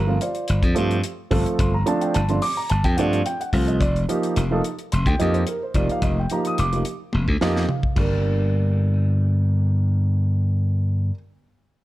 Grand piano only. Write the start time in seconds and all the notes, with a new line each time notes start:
Already playing: A#4 A#5
0.07 F3 A3 C4 F4
0.21 C4 F4 G4 C5 D5 F5
0.62 C4 D4
0.75 F3 A3 C4 G4
1.03 C4 G4
1.31 F3 A3 C4 A4
1.60 C6
1.74 A#5
1.86 F3 A3 C4 D4 A5
2.02 G5
2.15 A5
2.29 F3 A3 C4 D4 C6
2.42 C4 G4 D6
2.57 A#5
2.70 A5
2.84 C4 D4 G5
2.97 F3 A3 C4 D4 F#5
3.13 F5
3.26 C4 F4 G5
3.41 F#5
3.53 F3 A3 C4 F4 F5
3.68 D#5
3.81 D5
4.09 F3 A#3 D#4 G4
4.51 F3 A#3 D#4 A4
4.64 D#4 G4
4.92 C6
5.06 D#4 G4 G5
5.19 F3 A#3 D#4 G4 D#5
5.34 C5
5.48 D#4 G4 A#4
5.63 C5
5.75 F3 A#3 D#4 G4 D5
5.91 F5
6.04 D#5
6.19 G5
6.31 F3 A#3 D#4 G4 A#5
6.47 D#6
6.60 D6
6.73 F3 A#3 D#4 G4
6.87 D#4 G4
7.28 D#4 F4
7.41 F3 A#3 D#4 G4 D#5
7.71 D#4 A#4
7.96 G3 A#3 D4
8.00 A#4